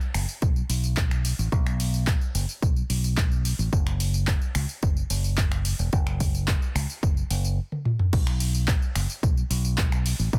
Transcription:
0.01 tambourine soft
0.14 0.24 F#1 medium
0.14 finger snap medium
0.14 open hi-hat loud
0.14 tambourine medium
0.29 tambourine soft
0.42 0.61 B1 medium
0.42 kick loud
0.42 tambourine soft
0.56 tambourine soft
0.69 1.31 B1 medium
0.69 open hi-hat loud
0.69 tambourine medium
0.84 tambourine soft
0.97 kick loud
0.97 clap loud
0.97 tambourine soft
1.11 finger snap medium
1.11 tambourine soft
1.25 open hi-hat loud
1.25 tambourine medium
1.39 1.48 A1 medium
1.39 tambourine soft
1.52 2.14 B1 loud
1.52 kick loud
1.52 tambourine soft
1.67 finger snap medium
1.67 tambourine soft
1.80 open hi-hat loud
1.80 tambourine medium
1.94 tambourine soft
2.07 kick loud
2.07 clap loud
2.07 tambourine soft
2.21 tambourine soft
2.35 2.44 F#1 loud
2.35 open hi-hat loud
2.35 tambourine medium
2.49 tambourine soft
2.62 2.81 B1 medium
2.62 kick loud
2.62 tambourine soft
2.76 tambourine soft
2.90 3.52 B1 loud
2.90 open hi-hat loud
2.90 tambourine medium
3.04 tambourine soft
3.17 kick loud
3.17 clap loud
3.17 tambourine soft
3.32 tambourine soft
3.45 open hi-hat loud
3.45 tambourine medium
3.59 3.68 A1 medium
3.59 tambourine soft
3.73 4.34 F#1 loud
3.73 kick loud
3.73 tambourine soft
3.87 finger snap medium
3.87 tambourine soft
4.00 open hi-hat medium
4.00 tambourine medium
4.14 tambourine soft
4.27 kick loud
4.27 clap loud
4.27 tambourine soft
4.42 tambourine soft
4.55 4.65 C#2 medium
4.55 finger snap medium
4.55 open hi-hat loud
4.55 tambourine medium
4.69 tambourine soft
4.83 5.01 F#1 medium
4.83 kick loud
4.83 tambourine soft
4.97 tambourine soft
5.10 5.72 F#1 medium
5.10 open hi-hat loud
5.10 tambourine medium
5.24 tambourine soft
5.38 kick loud
5.38 clap loud
5.38 tambourine soft
5.52 finger snap medium
5.52 tambourine soft
5.65 open hi-hat loud
5.65 tambourine medium
5.79 5.88 E1 medium
5.79 tambourine soft
5.93 6.55 F#1 loud
5.93 kick loud
5.93 tambourine soft
6.07 finger snap medium
6.07 tambourine soft
6.20 kick medium
6.20 open hi-hat loud
6.20 tambourine medium
6.35 tambourine soft
6.48 kick loud
6.48 clap loud
6.48 tambourine soft
6.62 tambourine soft
6.75 6.85 C#2 medium
6.75 finger snap medium
6.75 open hi-hat loud
6.75 tambourine medium
6.90 tambourine soft
7.03 7.22 F#1 medium
7.03 kick loud
7.03 tambourine soft
7.17 tambourine soft
7.30 7.58 F#1 loud
7.30 open hi-hat loud
7.30 tambourine medium
7.45 tambourine soft
7.72 high tom soft
7.85 mid tom medium
7.99 mid tom medium
8.13 8.75 B1 loud
8.13 kick loud
8.13 tambourine soft
8.13 crash loud
8.27 finger snap medium
8.27 tambourine soft
8.40 open hi-hat loud
8.40 tambourine medium
8.55 tambourine soft
8.68 kick loud
8.68 clap loud
8.68 tambourine soft
8.82 tambourine soft
8.96 9.05 F#1 loud
8.96 finger snap medium
8.96 open hi-hat loud
8.96 tambourine medium
9.10 tambourine soft
9.23 9.42 B1 medium
9.23 kick loud
9.23 tambourine soft
9.37 tambourine soft
9.50 10.12 B1 medium
9.50 open hi-hat loud
9.50 tambourine medium
9.65 tambourine soft
9.78 kick loud
9.78 clap loud
9.78 tambourine soft
9.92 finger snap medium
9.92 tambourine soft
10.06 open hi-hat loud
10.06 tambourine medium
10.19 10.29 A1 medium
10.19 tambourine soft
10.33 10.39 B1 medium
10.33 kick loud
10.33 tambourine soft

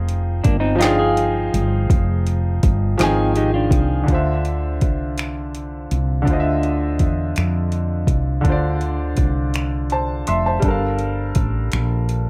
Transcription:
0.00 0.41 F1 medium
0.00 0.74 F3 medium
0.00 0.76 D#4 medium
0.00 0.22 F4 medium
0.00 0.22 G#4 medium
0.00 0.79 G#4 medium
0.00 0.80 F5 medium
0.00 0.77 G5 medium
0.09 closed hi-hat soft
0.44 1.50 G1 medium
0.44 0.60 A#3 medium
0.44 0.60 D4 medium
0.44 kick medium
0.44 closed hi-hat medium
0.60 0.79 C4 medium
0.60 0.79 D#4 medium
0.76 2.93 F3 medium
0.76 2.94 D#4 medium
0.80 0.98 D4 medium
0.80 0.98 F4 medium
0.80 2.95 G5 medium
0.80 snare medium
0.80 closed hi-hat medium
0.84 2.97 G#4 medium
0.84 2.98 F5 medium
0.99 2.04 F4 medium
0.99 2.04 G#4 medium
1.17 closed hi-hat medium
1.54 1.87 G1 medium
1.54 closed hi-hat medium
1.90 2.59 F1 loud
1.90 kick loud
1.90 closed hi-hat medium
2.27 closed hi-hat soft
2.63 2.97 G1 medium
2.63 kick medium
2.63 closed hi-hat medium
2.98 3.68 G#1 medium
2.98 4.08 D#3 medium
2.98 4.08 F3 medium
2.98 3.34 C4 medium
2.98 3.34 D#4 medium
2.98 4.09 G5 medium
2.98 snare medium
2.98 closed hi-hat medium
3.02 4.10 G#4 medium
3.02 4.11 G#5 medium
3.36 3.54 D#4 medium
3.36 3.54 G4 medium
3.36 closed hi-hat medium
3.54 4.07 D4 medium
3.54 4.06 F4 medium
3.71 4.04 C2 medium
3.71 kick medium
3.71 closed hi-hat medium
4.03 6.20 D3 medium
4.03 6.22 D4 soft
4.08 4.82 D2 medium
4.08 6.23 F4 medium
4.08 6.25 C5 medium
4.08 kick medium
4.08 closed hi-hat medium
4.14 6.26 E5 medium
4.45 closed hi-hat soft
4.81 5.87 C2 medium
4.81 kick medium
4.81 closed hi-hat medium
5.18 finger snap medium
5.18 closed hi-hat medium
5.55 closed hi-hat soft
5.91 6.24 C2 medium
5.91 closed hi-hat medium
6.22 8.39 D3 medium
6.22 8.40 D4 medium
6.27 7.01 D2 medium
6.27 8.42 F4 medium
6.27 8.43 C5 medium
6.27 kick medium
6.27 closed hi-hat medium
6.33 6.36 D#5 medium
6.40 8.48 E5 medium
6.63 closed hi-hat soft
6.99 7.33 E2 medium
6.99 kick medium
6.99 closed hi-hat medium
7.36 8.06 F2 medium
7.36 finger snap medium
7.36 closed hi-hat medium
7.72 closed hi-hat soft
8.07 8.41 C2 medium
8.07 kick medium
8.07 closed hi-hat medium
8.41 10.57 D3 medium
8.41 10.59 D4 medium
8.41 kick medium
8.41 closed hi-hat medium
8.45 9.14 D2 medium
8.45 10.60 F4 medium
8.49 9.90 C5 medium
8.49 9.91 D5 medium
8.81 closed hi-hat soft
9.17 10.23 C2 medium
9.17 kick medium
9.17 closed hi-hat medium
9.54 finger snap medium
9.54 closed hi-hat medium
9.90 10.26 C5 soft
9.90 10.26 A5 medium
9.90 closed hi-hat soft
10.27 10.60 F1 medium
10.27 10.45 E5 medium
10.27 10.45 C6 medium
10.27 closed hi-hat medium
10.46 10.81 C5 soft
10.46 10.80 A5 medium
10.59 11.32 G1 medium
10.59 12.30 G3 medium
10.59 12.30 D4 soft
10.59 kick medium
10.59 closed hi-hat medium
10.65 12.30 A4 medium
10.65 12.30 A#4 medium
10.71 12.30 F5 medium
10.99 closed hi-hat soft
11.35 11.69 A1 medium
11.35 kick medium
11.35 closed hi-hat medium
11.72 12.30 A#1 medium
11.72 finger snap medium
11.72 closed hi-hat medium
12.09 closed hi-hat soft

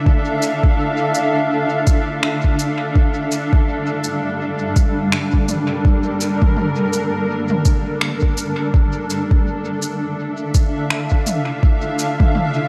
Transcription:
0.00 12.68 D4 medium
0.00 12.68 A4 medium
0.00 4.15 E5 medium
0.00 4.71 F5 medium
0.06 kick loud
0.42 shaker soft
0.63 kick loud
1.15 shaker soft
1.87 kick loud
1.87 shaker soft
2.23 finger snap medium
2.44 kick medium
2.59 shaker soft
2.95 8.74 G3 medium
2.95 kick loud
3.31 shaker soft
3.53 kick loud
4.04 shaker soft
4.76 kick loud
4.76 shaker soft
5.07 8.74 A#4 medium
5.12 finger snap medium
5.33 kick medium
5.48 mid tom medium
5.48 shaker soft
5.85 kick loud
6.21 shaker soft
6.42 kick medium
6.42 mid tom medium
6.57 mid tom medium
6.93 shaker soft
7.50 mid tom medium
7.65 kick loud
7.65 shaker soft
8.01 finger snap medium
8.23 kick medium
8.37 shaker soft
8.74 kick loud
9.10 shaker soft
9.31 kick medium
9.43 12.68 E5 medium
9.82 shaker soft
9.88 12.68 F5 medium
10.54 kick medium
10.54 shaker soft
10.90 finger snap medium
11.12 kick medium
11.27 mid tom medium
11.27 shaker soft
11.63 kick loud
11.99 shaker medium
12.20 kick loud
12.20 mid tom medium
12.35 mid tom medium

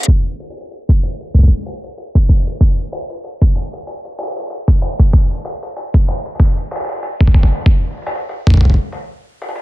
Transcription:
0.03 closed hi-hat soft
0.08 kick loud
0.26 closed hi-hat soft
0.40 closed hi-hat medium
0.50 closed hi-hat medium
0.57 closed hi-hat soft
0.61 closed hi-hat medium
0.71 closed hi-hat soft
0.89 kick loud
0.89 closed hi-hat soft
1.03 closed hi-hat medium
1.20 closed hi-hat soft
1.34 kick soft
1.34 closed hi-hat soft
1.39 kick medium
1.43 kick medium
1.48 kick medium
1.52 closed hi-hat soft
1.66 closed hi-hat medium
1.84 closed hi-hat soft
1.98 closed hi-hat soft
2.15 kick loud
2.15 closed hi-hat soft
2.29 kick medium
2.29 closed hi-hat medium
2.47 closed hi-hat soft
2.61 kick loud
2.61 closed hi-hat soft
2.78 closed hi-hat soft
2.92 closed hi-hat medium
3.10 closed hi-hat soft
3.24 closed hi-hat soft
3.42 kick loud
3.42 closed hi-hat soft
3.55 closed hi-hat medium
3.73 closed hi-hat soft
3.87 closed hi-hat soft
4.05 closed hi-hat soft
4.19 closed hi-hat medium
4.23 closed hi-hat medium
4.27 closed hi-hat medium
4.32 closed hi-hat soft
4.36 closed hi-hat soft
4.40 closed hi-hat soft
4.43 closed hi-hat soft
4.47 closed hi-hat soft
4.50 closed hi-hat medium
4.68 kick loud
4.68 closed hi-hat soft
4.82 closed hi-hat medium
4.99 kick medium
4.99 closed hi-hat medium
5.13 kick loud
5.13 closed hi-hat soft
5.31 closed hi-hat soft
5.34 closed hi-hat soft
5.38 closed hi-hat soft
5.41 closed hi-hat soft
5.45 closed hi-hat medium
5.63 closed hi-hat soft
5.76 closed hi-hat soft
5.94 kick loud
5.94 closed hi-hat soft
6.08 closed hi-hat medium
6.26 closed hi-hat soft
6.35 closed hi-hat soft
6.40 kick loud
6.40 closed hi-hat soft
6.45 closed hi-hat soft
6.57 closed hi-hat soft
6.71 closed hi-hat medium
6.76 closed hi-hat medium
6.80 closed hi-hat medium
6.84 closed hi-hat soft
6.89 closed hi-hat soft
6.92 closed hi-hat soft
6.96 closed hi-hat soft
6.99 closed hi-hat soft
7.03 closed hi-hat soft
7.20 kick loud
7.20 closed hi-hat soft
7.27 kick medium
7.34 kick loud
7.34 closed hi-hat medium
7.40 kick medium
7.40 closed hi-hat medium
7.45 closed hi-hat medium
7.52 closed hi-hat soft
7.55 closed hi-hat soft
7.61 closed hi-hat soft
7.66 kick loud
7.84 closed hi-hat soft
7.87 closed hi-hat soft
7.91 closed hi-hat soft
7.94 closed hi-hat soft
7.98 closed hi-hat soft
8.02 closed hi-hat soft
8.06 closed hi-hat medium
8.11 closed hi-hat soft
8.15 closed hi-hat soft
8.29 closed hi-hat soft
8.47 kick loud
8.47 closed hi-hat soft
8.50 kick medium
8.54 kick medium
8.57 kick medium
8.57 closed hi-hat medium
8.61 kick soft
8.65 kick soft
8.70 kick soft
8.74 kick soft
8.92 closed hi-hat soft
9.42 closed hi-hat soft
9.49 closed hi-hat soft
9.56 closed hi-hat soft

